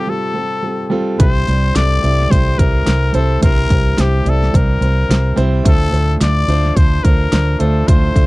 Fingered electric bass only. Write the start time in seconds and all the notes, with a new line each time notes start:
1.20 C2
1.48 C2
1.76 C2
2.04 C2
2.32 C2
2.59 C2
2.87 C2
3.15 C2
3.43 C2
3.70 C2
3.98 C2
4.25 C2
4.54 C2
4.81 C2
5.09 C2
5.37 C2
5.65 D2
5.93 D2
6.21 D2
6.48 D2
6.76 D2
7.05 D2
7.33 D2
7.61 D2
7.88 D2
8.16 D2